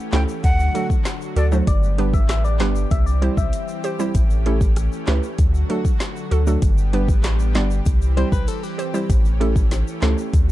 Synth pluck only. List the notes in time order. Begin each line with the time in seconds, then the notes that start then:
0.13 A3 C#4 E4 G4 A4
0.74 F#3 A3 D4 F#4 A4
1.36 F#4 A4
1.52 F#3 A3 D4 F#4 C5
1.98 G3 B3 D4 G4 B4
2.60 G3 B3 D4 G4 B4
3.22 G3 C4 E4 G4 C5
3.84 G4 C5
3.99 G3 C4 E4 G4 C5
4.46 A3 C#4 E4 G4 A4
5.07 A3 C#4 E4 G4 B4
5.69 F#3 A3 D4 F#4 A4
6.31 F#4 A4
6.47 F#3 A3 D4 F#4 A4
6.93 G3 B3 D4 G4 B4
7.55 G3 B3 D4 G4 D5
8.17 G3 C4 E4 G4 C5
8.78 G4 C5
8.94 G3 C4 E4 G4 C5
9.40 A3 C#4 E4 G4 A4
10.02 A3 C#4 E4 G4 A4